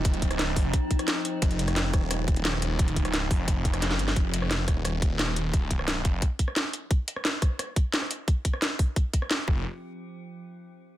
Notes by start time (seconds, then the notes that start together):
Already playing: D#1 F3 C4 D#4
0.05 kick, closed hi-hat
0.14 D1, closed hi-hat
0.22 kick, closed hi-hat
0.31 cross-stick, closed hi-hat
0.39 C#1, snare, closed hi-hat
0.56 F1, kick, open hi-hat
0.73 kick, closed hi-hat
0.91 kick, closed hi-hat
0.99 cross-stick, closed hi-hat
1.08 snare, closed hi-hat
1.25 closed hi-hat
1.42 F1, kick, closed hi-hat
1.51 closed hi-hat
1.59 closed hi-hat
1.68 cross-stick, closed hi-hat
1.76 snare, closed hi-hat
1.94 D#1, kick, cross-stick, closed hi-hat
2.11 cross-stick, closed hi-hat
2.28 kick, closed hi-hat
2.36 closed hi-hat
2.45 snare, closed hi-hat
2.54 cross-stick
2.62 closed hi-hat
2.79 kick, closed hi-hat
2.88 D1, closed hi-hat
2.96 kick, closed hi-hat
3.05 cross-stick, closed hi-hat
3.14 C#1, snare, closed hi-hat
3.31 F1, kick, open hi-hat
3.48 F1, kick, closed hi-hat
3.65 kick, closed hi-hat
3.74 cross-stick, closed hi-hat
3.82 snare, closed hi-hat
3.91 snare
3.99 G1, closed hi-hat
4.08 snare
4.16 F1, kick, closed hi-hat
4.34 closed hi-hat
4.42 cross-stick
4.51 snare, closed hi-hat
4.68 D#1, kick, cross-stick, closed hi-hat
4.85 cross-stick, closed hi-hat
5.02 kick, closed hi-hat
5.19 snare, closed hi-hat
5.28 cross-stick
5.36 closed hi-hat
5.54 kick, closed hi-hat
5.66 C#1
5.71 kick, closed hi-hat
5.79 cross-stick
5.88 B0, snare, closed hi-hat
6.05 F1, kick, closed hi-hat
6.22 kick, closed hi-hat
6.39 kick, closed hi-hat
6.48 cross-stick
6.56 snare, closed hi-hat
6.74 closed hi-hat
6.91 kick, closed hi-hat
7.08 closed hi-hat
7.16 cross-stick
7.25 snare, closed hi-hat
7.42 kick, cross-stick, closed hi-hat
7.59 cross-stick, closed hi-hat
7.76 kick, closed hi-hat
7.94 snare, closed hi-hat
8.02 cross-stick
8.11 closed hi-hat
8.28 kick, closed hi-hat
8.45 kick, closed hi-hat
8.54 cross-stick
8.62 snare, closed hi-hat
8.79 kick, open hi-hat
8.96 kick, closed hi-hat
9.13 kick, closed hi-hat
9.22 cross-stick
9.31 snare, closed hi-hat
9.48 F1, kick